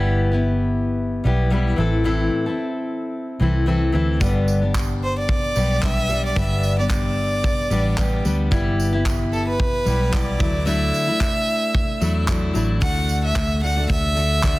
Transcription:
Already playing: fingered electric bass G1, steel-string acoustic guitar G3 B3 E4 G4
0.31 steel-string acoustic guitar B3 E4 G4
1.24 fingered electric bass B1, steel-string acoustic guitar G3 B3 E4 G4
1.50 steel-string acoustic guitar G3 B3 E4 G4
1.76 fingered electric bass A1, steel-string acoustic guitar E3 C4 E4 A4
2.04 steel-string acoustic guitar A2 E3 C4 E4 A4
2.46 steel-string acoustic guitar C4 E4 A4
3.40 fingered electric bass C2, steel-string acoustic guitar E3 C4 E4 A4
3.66 steel-string acoustic guitar E3 C4 E4 A4
3.92 fingered electric bass D2, steel-string acoustic guitar E3 C4 E4 A4
4.20 fingered electric bass G1, steel-string acoustic guitar G2 D3 G3 B3 D4 G4, kick, tambourine
4.48 tambourine
4.61 steel-string acoustic guitar G3 B3 D4 G4
4.74 kick, clap, tambourine
5.03 violin C5
5.19 violin D5
5.29 kick
5.55 fingered electric bass B1, steel-string acoustic guitar G3 B3 D4 G4, tambourine
5.82 steel-string acoustic guitar G3 B3 D4 G4, violin E5, kick, clap, tambourine
6.09 steel-string acoustic guitar G3 B3 D4 G4, tambourine
6.26 violin D5
6.35 fingered electric bass G1, steel-string acoustic guitar G2 D3 G3 B3 D4 G4, violin E5, kick, tambourine
6.63 tambourine
6.78 steel-string acoustic guitar G3 B3 D4 G4, violin D5
6.90 violin D5, kick, clap, tambourine
7.44 kick, tambourine
7.70 fingered electric bass A1, steel-string acoustic guitar G3 B3 D4 G4, tambourine
7.97 steel-string acoustic guitar G3 B3 D4 G4, kick, clap, tambourine
8.25 fingered electric bass D2, steel-string acoustic guitar G3 B3 D4 G4, tambourine
8.51 fingered electric bass G1, steel-string acoustic guitar G3 B3 E4 G4, kick, tambourine
8.80 tambourine
8.93 steel-string acoustic guitar B3 E4 G4
9.05 kick, clap, tambourine
9.33 violin A4, tambourine
9.48 violin B4
9.60 kick
9.85 fingered electric bass B1, steel-string acoustic guitar G3 B3 E4 G4, tambourine
10.12 steel-string acoustic guitar G3 B3 E4 G4, violin D5, kick, clap, tambourine
10.39 fingered electric bass D2, steel-string acoustic guitar F#3 A3 D4 E4, kick, tambourine
10.65 steel-string acoustic guitar D3 F#3 A3 D4 E4, violin E5, tambourine
10.94 tambourine
11.07 steel-string acoustic guitar A3 D4 E4
11.21 kick, clap, tambourine
11.48 tambourine
11.75 kick
12.00 fingered electric bass E2, steel-string acoustic guitar F#3 A3 D4 E4, tambourine
12.28 steel-string acoustic guitar F#3 A3 D4 E4, kick, clap, tambourine
12.53 fingered electric bass A1, steel-string acoustic guitar F#3 A3 D4 E4, tambourine
12.80 fingered electric bass D2, steel-string acoustic guitar D3 A3 D4 F#4, violin F#5, kick, tambourine
13.09 tambourine
13.24 violin E5
13.36 fingered electric bass D2, kick, clap, tambourine
13.61 steel-string acoustic guitar D3 A3 D4 F#4, violin F#5
13.76 steel-string acoustic guitar A3 D4 F#4
13.90 fingered electric bass D2, violin E5, kick, tambourine
14.15 steel-string acoustic guitar D3 A3 D4 F#4, tambourine
14.41 steel-string acoustic guitar D3 A3 D4 F#4, kick, clap, tambourine

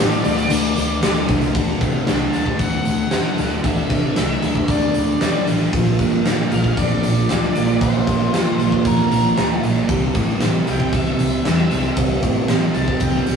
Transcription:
Already playing: distorted electric guitar D3 A3, lead electric guitar D5
0.00 fingered electric bass A2, distorted electric guitar D4
0.12 closed hi-hat
0.23 fingered electric bass D2, distorted electric guitar A3 D4, closed hi-hat
0.37 closed hi-hat
0.50 fingered electric bass D2, distorted electric guitar D3 A3 D4, closed hi-hat
0.76 fingered electric bass D2, distorted electric guitar A3 D4, closed hi-hat
1.02 fingered electric bass D2, distorted electric guitar D3 A3 D4, snare, closed hi-hat
1.16 closed hi-hat
1.28 fingered electric bass C2, distorted electric guitar A3 D4, kick, closed hi-hat
1.41 closed hi-hat
1.55 fingered electric bass D2, distorted electric guitar D3 A3 D4, kick, closed hi-hat
1.81 fingered electric bass C3, distorted electric guitar A3 D4, kick, closed hi-hat
2.07 fingered electric bass C2, distorted electric guitar D3 A3 D4, snare, closed hi-hat
2.33 fingered electric bass D2, distorted electric guitar A3 D4, lead electric guitar A5, closed hi-hat
2.46 kick
2.59 fingered electric bass D2, lead electric guitar F#5, kick, closed hi-hat
2.85 fingered electric bass D2, closed hi-hat
3.11 fingered electric bass F#2, distorted electric guitar D3 A3 D4, snare, closed hi-hat
3.37 fingered electric bass D2, distorted electric guitar A3 D4, snare, closed hi-hat
3.63 fingered electric bass D2, distorted electric guitar D3 A3 D4, lead electric guitar E5, kick, closed hi-hat
3.90 fingered electric bass C3, distorted electric guitar A3 D4, kick, closed hi-hat
4.16 fingered electric bass C2, distorted electric guitar D3 A3 D4, snare, closed hi-hat
4.42 fingered electric bass D2, distorted electric guitar A3 D4, closed hi-hat
4.55 kick
4.68 fingered electric bass D2, lead electric guitar D5, kick, closed hi-hat
4.94 fingered electric bass D2, closed hi-hat
5.20 fingered electric bass F#2, distorted electric guitar D3 A3 D4, snare, closed hi-hat
5.47 fingered electric bass A1, distorted electric guitar A3 D4, snare, closed hi-hat
5.73 fingered electric bass A#1, distorted electric guitar A#2 F3 A#3, kick, closed hi-hat
5.99 fingered electric bass G2, distorted electric guitar F3 A#3, kick, closed hi-hat
6.25 fingered electric bass G1, distorted electric guitar A#2 F3 A#3, snare, closed hi-hat
6.51 fingered electric bass A#1, distorted electric guitar F3 A#3, lead electric guitar F5, closed hi-hat
6.64 kick
6.77 fingered electric bass A#1, lead electric guitar D5, kick, closed hi-hat
7.03 fingered electric bass A#1, closed hi-hat
7.29 fingered electric bass D2, distorted electric guitar A#2 F3 A#3, snare, closed hi-hat
7.55 fingered electric bass A#1, distorted electric guitar F3 A#3, snare, closed hi-hat
7.81 fingered electric bass A#1, distorted electric guitar A#2 F3 A#3, lead electric guitar C5, kick, closed hi-hat
8.07 fingered electric bass G2, distorted electric guitar F3 A#3, kick, closed hi-hat
8.32 fingered electric bass G1, distorted electric guitar A#2 F3 A#3, snare, closed hi-hat
8.59 fingered electric bass A#1, distorted electric guitar F3 A#3, closed hi-hat
8.72 kick
8.85 fingered electric bass A#1, lead electric guitar A#4, kick, closed hi-hat
9.11 fingered electric bass A#1, closed hi-hat
9.37 fingered electric bass D2, distorted electric guitar A#2 F3 A#3, snare, closed hi-hat
9.62 fingered electric bass A#1, distorted electric guitar F3 A#3, snare, closed hi-hat
9.88 fingered electric bass C2, distorted electric guitar C3 G3 C4, kick, closed hi-hat
10.14 fingered electric bass A2, distorted electric guitar G3 C4, kick, closed hi-hat
10.40 fingered electric bass A1, distorted electric guitar C3 G3 C4, snare, closed hi-hat
10.67 fingered electric bass C2, distorted electric guitar G3 C4, lead electric guitar G5, closed hi-hat
10.80 kick
10.93 fingered electric bass C2, lead electric guitar E5, kick, closed hi-hat
11.19 fingered electric bass C2, closed hi-hat
11.44 fingered electric bass E2, distorted electric guitar C3 G3 C4, snare, closed hi-hat
11.70 fingered electric bass C2, distorted electric guitar G3 C4, snare, closed hi-hat
11.96 fingered electric bass C2, distorted electric guitar C3 G3 C4, kick, closed hi-hat
12.22 fingered electric bass A2, distorted electric guitar G3 C4, kick, closed hi-hat
12.48 fingered electric bass A1, distorted electric guitar C3 G3 C4, snare, closed hi-hat
12.74 fingered electric bass C2, distorted electric guitar G3 C4, lead electric guitar A5, closed hi-hat
12.88 kick
13.00 fingered electric bass C2, lead electric guitar G5, kick, closed hi-hat
13.27 fingered electric bass C2, closed hi-hat

